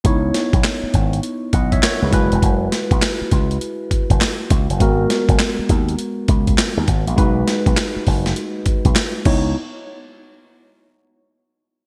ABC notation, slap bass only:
X:1
M:4/4
L:1/16
Q:"Swing 16ths" 1/4=101
K:C#dor
V:1 name="Slap bass" clef=bass
C,,2 z B,,, z2 G,,,2 z2 B,,,2 z C,, F,,, E,,, | F,,,2 z B,,, z2 C,,2 z3 F,,, z2 C,, F,,, | G,,,2 z F,,, z2 D,,2 z2 C,,2 z D,, G,,, A,,, | B,,,2 z B,,, z2 F,,,2 z3 B,,, z2 C,,2 |
z16 |]